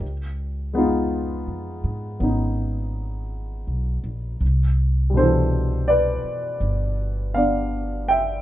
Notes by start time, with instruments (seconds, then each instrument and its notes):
Already playing: grand piano G4
0.00 upright bass C#2
0.73 grand piano G#3 B3 D#4
0.78 grand piano F4
1.47 upright bass F2
1.84 upright bass G#2
2.20 upright bass G#1, grand piano B3 C#4 D#4
3.67 upright bass B1
4.04 upright bass A#1
4.41 upright bass C2
5.10 grand piano B2 G3
5.17 grand piano D4 A4 C5
5.21 grand piano E3
5.88 grand piano B4 D5
6.24 muted upright bass stroke
6.60 upright bass G1
7.34 grand piano B3 D4 D5 F5
8.08 grand piano E5 G5